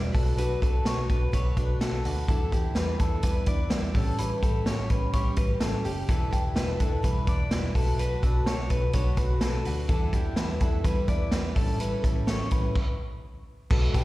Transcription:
Already playing: E1 G3 D4 E4 B4 D5
0.12 B1 A3 D4 F#4 A4 B4, kick, open hi-hat
0.37 B2 F#3 A3 D4 F#4 B4, closed hi-hat
0.61 B1 A3 D4 F#4 A4 B4, kick, closed hi-hat
0.85 B1 A3 D4 F#4 B4 C#5, snare, closed hi-hat
1.10 B1 A3 D4 F#4 B4, kick, closed hi-hat
1.32 B1 B2 F#3 A3 D4 F#4 B4 C#5, kick, closed hi-hat
1.57 B1 A3 D4 F#4 B4, kick, closed hi-hat
1.80 B1 A3 D4 F#4 A4 B4, snare, closed hi-hat
2.04 D2 A3 D4 F#4 B4, open hi-hat
2.28 E2 E3 G3 D4 E4 A4 B4, kick, closed hi-hat
2.52 E2 D4 E4 G4 B4, kick, closed hi-hat
2.75 E2 G3 D4 E4 B4, snare, closed hi-hat
2.99 E2 D4 E4 A4 B4, kick, closed hi-hat
3.22 E2 E3 G3 D4 E4 B4, kick, closed hi-hat
3.46 E2 D4 E4 B4 D5, kick, closed hi-hat
3.70 E2 G3 D4 E4 B4, snare, closed hi-hat
3.94 A1 G3 C#4 G4 A4, kick, open hi-hat
4.18 A2 E3 G3 C#4 G4 B4, closed hi-hat
4.42 A1 G3 C#4 G4 A4, kick, closed hi-hat
4.65 A1 E3 G3 C#4 C#5, snare, closed hi-hat
4.70 G4
4.89 A1 G3 C#4 G4 B4, kick, closed hi-hat
5.13 A1 A2 E3 G3 C#4 G4 C#5, kick, closed hi-hat
5.36 A1 G3 C#4 G4 B4, kick, closed hi-hat
5.60 A1 E3 G3 C#4 G4 A4, snare, closed hi-hat
5.85 F#1 G3 C#4 G4, open hi-hat
6.08 E1 E3 G3 D4 E4 A4 B4, kick, closed hi-hat
6.31 E1 D4 E4 G4 B4, kick, closed hi-hat
6.55 E1 G3 D4 E4 B4, snare, closed hi-hat
6.78 E1 D4 E4 A4 B4, kick, closed hi-hat
7.03 E1 E3 G3 D4 E4 B4, kick, closed hi-hat
7.27 E1 D4 E4 B4 D5, kick, closed hi-hat
7.51 E1 G3 D4 E4 B4, snare, closed hi-hat
7.74 B1 A3 D4 F#4 A4 B4, kick, open hi-hat
7.98 B2 F#3 A3 D4 F#4 B4, closed hi-hat
8.22 B1 A3 D4 F#4 A4 B4, kick, closed hi-hat
8.45 B1 A3 D4 F#4 B4 C#5, snare, closed hi-hat
8.70 B1 A3 D4 F#4 B4, kick, closed hi-hat
8.93 B1 B2 F#3 A3 D4 F#4 B4 C#5, kick, closed hi-hat
9.17 B1 D4 F#4 B4, kick, closed hi-hat
9.21 A3
9.41 B1 A3 D4 F#4 A4, snare, closed hi-hat
9.45 B4
9.65 D2 A3 D4 F#4 B4, open hi-hat
9.88 E2 E3 G3 D4 E4 A4 B4, kick, closed hi-hat
10.13 E2 D4 E4 G4 B4, kick, closed hi-hat
10.36 E2 G3 D4 E4 B4, snare, closed hi-hat
10.60 E2 E4 A4 B4, kick, closed hi-hat
10.64 D4
10.84 E2 E3 G3 D4 E4 B4, kick, closed hi-hat
11.08 E2 E4 B4 D5, kick, closed hi-hat
11.13 D4
11.32 E2 G3 D4 E4 B4, snare, closed hi-hat
11.56 A1 G3 C#4 E4 A4, kick, open hi-hat
11.79 A2 E3 G3 C#4 E4 A4 B4, closed hi-hat
12.02 A1 G3 C#4 E4 A4, kick, closed hi-hat
12.26 A1 G3 C#4 E4 A4 C#5, snare, closed hi-hat
12.51 A1 G3 C#4 E4 A4 B4, kick, closed hi-hat
12.75 kick, crash
13.70 B1 B2 F#3 A3 D4 F#4 A4 B4, kick, crash
13.94 B1 A3 D4 F#4 G4 B4, kick, closed hi-hat

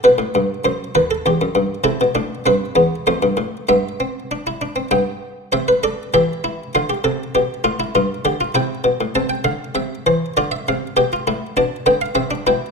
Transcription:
0.04 B2 B4
0.18 A2
0.35 G2
0.64 F#2 C5
0.95 D#2 B4
1.11 A4
1.26 E2 G4
1.41 F#2
1.55 G2
1.84 C3 E4 A4
2.01 B2
2.15 A2 D4
2.46 G2 C4 B4
2.75 E2 B3
3.07 F2 A3 C5
3.22 G2
3.37 A2
3.69 G2 B3 E5
4.00 C4
4.31 D4
4.47 E4
4.61 D4
4.76 C4
4.91 G2 B3 G5
5.52 C3 C5 E5
5.68 B4
5.83 A4 D5
6.14 E3 G4 E5
6.44 E4
6.75 D3 F4 F5
6.90 G4
7.04 C3 A4
7.35 B2 G4
7.64 A2 F4
7.80 E4
7.95 G2 F4
8.25 D3 G4
8.41 F4
8.55 C3 E4 G5
8.84 B2
9.01 A2
9.15 C3 C4 A5
9.29 G5
9.44 D3 F5
9.75 C3 E5
10.06 E3 C5
10.37 D3 F4 D5
10.52 E5
10.68 C3 F5
10.97 B2 G4 G5
11.13 F4
11.27 A2 E4
11.57 B2 D4 A5
11.86 D3 B3 G5
12.01 F5
12.15 C3 C4 E5
12.31 D4
12.47 B2 E4 G5

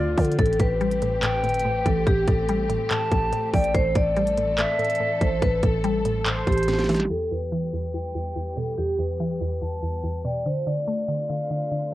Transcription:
Already playing: D2 D3 A3 C4 F4 D5
0.18 D3 F3, kick, closed hi-hat, open hi-hat
0.25 closed hi-hat
0.32 closed hi-hat
0.39 A1 A2 E3 A3 G4 A4, kick, closed hi-hat
0.46 closed hi-hat
0.53 closed hi-hat
0.60 A1 A2 B4, kick, closed hi-hat
0.81 G3, closed hi-hat
0.91 closed hi-hat
1.02 A2, closed hi-hat
1.23 A2 G5, clap, closed hi-hat
1.43 G1 A2, closed hi-hat
1.49 closed hi-hat
1.54 closed hi-hat
1.59 closed hi-hat
1.65 A1 A2
1.86 A1 E3 A4, kick, closed hi-hat
2.06 A1 A2 G4, kick, closed hi-hat
2.27 A1 A2 A4, kick, closed hi-hat
2.48 G3, closed hi-hat
2.69 A2, closed hi-hat
2.90 A2 A5, clap, closed hi-hat
3.11 A1 A2, kick, closed hi-hat
3.32 A2, closed hi-hat
3.53 A1 E3 D5 G5, kick, closed hi-hat, open hi-hat
3.64 closed hi-hat
3.74 A1 A2 A4 C5, kick, closed hi-hat
3.95 A1 A2 D5, kick, closed hi-hat
4.16 G3, closed hi-hat
4.27 closed hi-hat
4.37 A2, closed hi-hat
4.58 A2 E5, clap, closed hi-hat
4.79 A2, closed hi-hat
4.85 closed hi-hat
4.90 closed hi-hat
4.95 closed hi-hat
5.00 A2
5.21 A1 E3 C5, kick, closed hi-hat
5.42 A1 A2 B4, kick, closed hi-hat
5.63 A1 A2 A4, kick, closed hi-hat
5.84 G3, closed hi-hat
6.05 A2, closed hi-hat
6.26 A2 C5, clap, closed hi-hat
6.47 A1 A2 G4, kick, closed hi-hat
6.52 closed hi-hat
6.58 closed hi-hat
6.63 closed hi-hat
6.68 A2, snare, closed hi-hat
6.73 snare
6.79 snare
6.84 snare
6.89 E3, snare, closed hi-hat, open hi-hat
6.94 snare, closed hi-hat
7.00 snare, closed hi-hat
7.05 snare
7.10 E2 E3 G3 B3 G4 A4
7.31 E2 B4
7.52 E3
7.73 E2
7.94 E2 G5
8.15 E2
8.36 E2
8.57 B2 A4
8.78 E2 G4
8.99 E2 B4
9.20 E3
9.41 E2
9.62 E2 A5
9.83 E2
10.04 E2
10.25 B2 D5 G5
10.46 D3 A3 C4 F4 C5
10.67 D3 D5
10.88 A3
11.08 D3
11.30 D3 F5
11.51 D3
11.72 D3

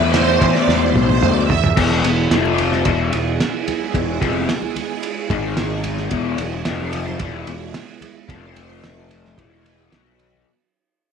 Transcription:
Already playing: E2 B2 E3 A3 B3 E4
0.00 E2 C5, low conga
0.14 snare, ride
0.41 E3 D5, kick, ride
0.55 snare
0.67 E2 C5, snare
0.83 B4
0.94 B1 C5, high tom, high conga
1.09 high tom, high conga
1.22 D2 D5, mid tom, high conga
1.37 E5, high conga
1.49 E2, floor tom, low conga
1.64 floor tom, low conga
1.76 E1 E2 B2 E3 B3 E4 G#4 B4, kick, crash
1.91 snare
2.03 E1 E2 B2, ride
2.30 F1 F2 C3 F3 C4 F4 C5, snare, ride, high conga
2.45 high conga
2.58 ride, low conga
2.72 snare, high conga
2.85 E1 E2 B2 E3 G#3 B3 E4 G#4, kick, ride
3.13 E1 E2 B2, ride
3.40 snare, ride
3.68 ride, high conga, low conga
3.94 E1 E2 B2, kick, ride
4.21 F1 F2 C3 F3, kick, ride
4.49 snare, ride, high conga
4.62 high conga
4.76 ride, low conga
5.03 ride
5.30 G#1 G#2 D#3 G#3 D#4, kick, ride
5.57 snare, ride
5.84 ride, high conga, low conga
5.97 snare
6.11 E1 E2 B2 E3 B3 E4, kick, ride
6.38 E1 E2 B2, ride, high conga
6.65 F1 F2 C3 F3 C4 F4 C5, snare, ride, high conga
6.80 high conga
6.93 ride, low conga
7.08 high conga
7.20 E1 E2 B2 E3 G#3 B3 E4 G#4, kick, ride
7.47 E1 E2 B2, ride
7.74 snare, ride
8.01 ride, high conga, low conga
8.28 F1 F2 C3 F3 C4 F4 C5, kick, ride
8.56 ride, high conga
8.84 snare, ride, high conga, low conga
9.09 ride, low conga
9.23 snare, high conga
9.36 E1 E2 B2 E3 G#3 B3 E4 G#4, kick, ride
9.65 ride, low conga
9.91 B1 B2 F#3 B3 F#4 B4, snare, ride, high conga
10.06 high conga
10.19 ride, low conga
10.34 low conga

